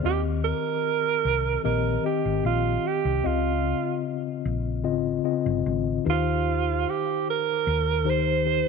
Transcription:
0.03 D#2 D#3 C4 G4 D#5
0.45 A#4
1.25 C2
1.63 A#1 D#3 C4 G4 A#4 D#5
2.03 D#3 C4 G4 D#5
2.25 G#1
2.45 A#1 F4
2.87 G4
3.05 C2
3.23 C#2 C#3 C4 F4 D#5
4.45 A#1
4.84 G#1 C#3 C4 F4 D#5
5.24 C#3 C4 F4 D#5
5.46 G1
5.66 G#1
6.05 D#2 D#3 D#4 G4 B4
6.10 F4
6.89 G4
7.30 A#4
7.67 D#2
8.05 D#3 D#4 G4 C5
8.10 C5
8.46 D#3 D#4 G4 C5

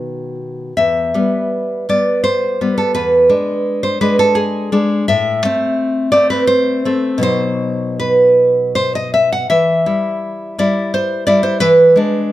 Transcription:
Already playing: B2 D#3 B3 F#4
0.77 E2 E5
1.14 G3 B3
1.89 G3 B3 D5
2.24 C5
2.61 G3 B3
2.78 A4
2.95 E2 B4
3.29 G#3 D4
3.83 C5
4.01 G#3 D4 B4
4.19 A4
4.35 G#4
4.72 G#3 D4
5.08 A2 E5
5.45 A3 C4
6.12 A3 C4 D5
6.30 B4
6.47 C5
6.85 A3 C4
7.18 B2 F#3 D#4
7.23 C5
8.00 B4
8.75 C5
8.95 D#5
9.14 E5
9.32 F#5
9.50 E3 E5
9.86 G3 E4
10.58 G3 E4 D5
10.94 C5
11.27 G3 E4 D5
11.43 C5
11.60 E3 B4
11.96 G#3 D4

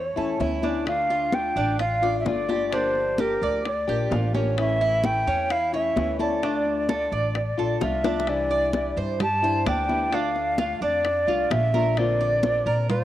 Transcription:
Already playing: E2 C#5
0.16 E2 A3 C#4 E4 A4, high bongo, high conga
0.39 D2 E3 A3 C#4 E4, high bongo, low bongo, high conga
0.62 A3 C#4 D4 E4, high bongo, high conga
0.86 D3 A3 D4 F4 F5, high bongo, high conga
1.10 F4, high conga
1.32 D3 A3 D4 F4 G5, high bongo, high conga
1.56 A1 D4, high bongo
1.79 F4 F5, muted nylon-string guitar stroke, high bongo, high conga
2.02 A3 D4 F4 D5, high bongo, high conga
2.20 E5
2.25 G1 D3 A3 D4 F4 D5, high bongo, low bongo, high conga
2.48 A3 D4 F4 G4, high bongo, high conga
2.72 D3 F3 A#3 D4 G4 C5, high bongo, high conga
2.95 high conga
3.18 F3 A#3 D4 G4 A#4, high bongo, high conga
3.42 D2 D5, high bongo, high conga
3.65 D5, muted nylon-string guitar stroke, high bongo, high conga
3.87 A#1 F3 A#3 D4 G4, high bongo, high conga
4.10 A1 F3 A#3 D4 F4 G4, high bongo, low bongo, high conga
4.34 F3 A#3 C#4 D4 G4, high bongo, high conga
4.57 E3 A3 C#4 E4 E5, high bongo, high conga
4.81 E4, high conga
5.04 E3 A3 C#4 E4 G5, high bongo, high conga
5.27 E2 C#4, high bongo
5.50 E4 F5, muted nylon-string guitar stroke, high bongo, high conga
5.73 A3 C#4 E4 C#5 E5, high bongo, high conga
5.96 D2 E3 A3 C#4 E4, high bongo, low bongo, high conga
6.19 A3 C#4 E4 A4 D5, high bongo, high conga
6.42 D3 A3 D4 F4, high bongo, high conga
6.66 high conga
6.88 D3 A3 D4 F4 A4, high bongo, high conga
7.12 A1 D5, high bongo, high conga
7.35 muted nylon-string guitar stroke, high bongo, high conga
7.58 A#1 A3 D4 F4 A4, high bongo, high conga
7.81 C2 D3 A3 D4 F4 E5, high bongo, low bongo, high conga
8.04 A3 D4 F4, high bongo, high conga
8.20 low bongo
8.27 C3 E3 G3 D4 E4 D5, high bongo, high conga
8.50 D5, high bongo, high conga
8.73 E3 G3 D4 E4, high bongo, high conga
8.97 G2 C5, high bongo, high conga
9.20 G4 A5, muted nylon-string guitar stroke, high bongo, high conga, low conga
9.42 E3 G3 D4 E4 C5, high bongo, high conga
9.65 D2 E3 G3 D4 E4 G5, high bongo, low bongo, high conga
9.89 E3 G3 D4 E4, high conga
10.11 D3 A3 D4 F4 F5, high bongo, high conga
10.35 high bongo, high conga
10.58 D3 A3 D4 F4, high bongo, high conga
10.81 F2 D4 D5, high bongo, high conga
11.05 muted nylon-string guitar stroke, high bongo, high conga
11.27 C2 A3 D4 F4, high bongo, high conga
11.50 A#1 D3 A3 D4 F4 E5, high bongo, low bongo, high conga
11.74 A3 D4 F4 A#4, high conga
11.97 D3 A#3 C4 F4 D5, high bongo, high conga
12.20 D5, high bongo, high conga
12.43 D3 A#3 C4 F4, high bongo, high conga
12.66 A#2 A#4, high bongo, high conga
12.89 F4 C5, muted nylon-string guitar stroke, high bongo, high conga, low conga

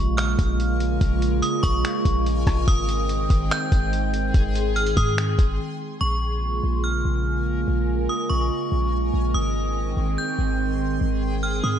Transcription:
Already playing: A#1 C#3 G#3 A#3 F4 A#4 G#5 C#6
0.17 F6, finger snap, closed hi-hat
0.39 A#1, kick, closed hi-hat
0.60 closed hi-hat
0.80 closed hi-hat
1.01 A#1, kick, closed hi-hat
1.22 closed hi-hat
1.42 D#6, closed hi-hat
1.63 A#1 C#6, kick, closed hi-hat
1.85 finger snap, closed hi-hat
2.05 A#1, kick, closed hi-hat
2.26 closed hi-hat
2.47 A#1, kick, cross-stick, closed hi-hat
2.68 G#1 D#3 C4 G#4 G5 C6 D#6, kick, closed hi-hat
2.89 closed hi-hat
3.09 closed hi-hat
3.30 G#1, kick, closed hi-hat
3.51 G6, finger snap, closed hi-hat
3.72 G#1, kick, closed hi-hat
3.93 closed hi-hat
4.14 closed hi-hat
4.34 G#1, kick, closed hi-hat
4.55 closed hi-hat
4.76 F6, closed hi-hat
4.87 closed hi-hat
4.97 G#2 D#6, kick, closed hi-hat
5.18 finger snap, closed hi-hat
5.39 G#1, kick, closed hi-hat
6.01 A#1 C#3 G#3 A#3 F4 A#4 G#5 C#6
6.64 A#1
6.84 F6
7.05 A#1
7.68 A#1
8.09 D#6
8.30 A#1 C#6
8.72 A#1
9.14 A#1
9.34 G#1 D#3 C4 G#4 G5 C6 D#6
9.97 G#1
10.18 G6
10.39 G#1
11.01 G#1
11.43 F6
11.64 G#2 D#6

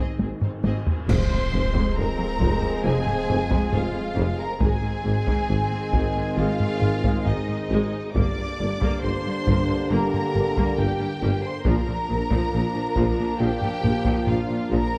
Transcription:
Already playing: D#3 G#3 C4 D#4 D#5
0.00 C4 G#4
0.19 G#1 G#2 C4 G#4, taiko high
0.41 G#2 C4 D#4 C5, taiko low-mid
0.64 G#1 G#2 C4 G#4 D#5, taiko high
0.87 G#2 C4 G#4, taiko low
1.09 F1 F2 F3 G#3 C4 G#4 C5 C6, concert bass drum, taiko, crash, impact
1.31 F2 G#3
1.52 F1 F2 G#3
1.74 F2 G#3, taiko
1.96 F1 F2 A#4 A#5
2.00 G#3
2.17 F2
2.22 G#3
2.40 F1 F2 G#3, taiko
2.62 F2 G#3
2.83 F1 F2 G#4 G#5
2.89 G#3
3.06 F2, taiko low-mid
3.12 G#3
3.28 F1 F2, taiko low-mid
3.34 G#3
3.50 F2, taiko
3.54 G#3
3.71 F1 F2 F4 F5, taiko low-mid
3.76 G#3
3.93 F2
3.98 G#3
4.15 F1 F2
4.19 G#3
4.38 A#4 A#5
4.58 G#1 G#2 D#3 G#3 C4 G#4 G#5, taiko
4.64 G#3 C4
4.82 G#2 G#3
5.04 G#1 G#2 G#3
5.27 G#2 G#3, taiko
5.49 G#1 G#2 G#3
5.71 G#2 G#3
5.93 G#1 G#2 G#3, taiko
6.15 G#2 G#3
6.36 G#1 G#2 G#3 F4 F5
6.59 G#2 G#3, taiko low-mid
6.80 G#1 G#2 G#3, taiko low-mid
7.03 G#2 G#3, taiko
7.25 G#1 G#2 G#3 D#4 D#5, taiko low-mid
7.48 G#2 G#3
7.70 G#1 G#2 G#3
8.13 G1 G2 D3 A#3 D4 G4 D5 D6, taiko
8.37 G2 A#3
8.59 G1 G2 A#3
8.81 G2 A#3, taiko
9.02 G1 G2 A#3 C5 C6
9.25 G2 A#3
9.46 G1 G2 A#3, taiko
9.68 G2 A#3
9.90 G1 G2 A#3 A#4 A#5
10.13 G2 A#3, taiko low-mid
10.34 G1 G2 A#3, taiko low-mid
10.56 G2 A#3, taiko
10.77 G1 G2 A#3 G4 G5, taiko low-mid
10.99 G2 A#3
11.21 G1 G2 A#3
11.43 C5 C6
11.64 A#1 A#2 F3 A#3 D4 F4 A#4 A#5, taiko
11.88 A#2 F3
12.09 A#1 A#2 F3
12.30 A#2 F3, taiko
12.53 A#1 A#2 F3
12.75 A#2 F3
12.96 A#1 A#2 F3, taiko
13.18 A#2 F3
13.40 A#1 A#2 F3 G4 G5
13.61 A#2 F3, taiko low-mid
13.82 A#1 A#2 F3, taiko low-mid
14.05 A#2 F3, taiko
14.27 A#1 A#2 F3 F4 F5, taiko low-mid
14.48 A#2 F3
14.70 A#1 A#2 F3 A#4 A#5

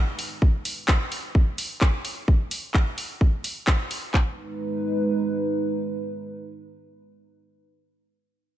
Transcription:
Already playing: G#3 D#4 B4
0.19 open hi-hat
0.42 kick
0.65 open hi-hat
0.88 kick, clap
1.12 open hi-hat
1.35 kick
1.58 open hi-hat
1.81 kick, clap
2.05 open hi-hat
2.28 kick
2.51 open hi-hat
2.74 kick, clap
2.98 open hi-hat
3.21 kick
3.44 open hi-hat
3.67 kick, clap
3.91 open hi-hat
4.14 G#3 D#4 B4, kick, clap

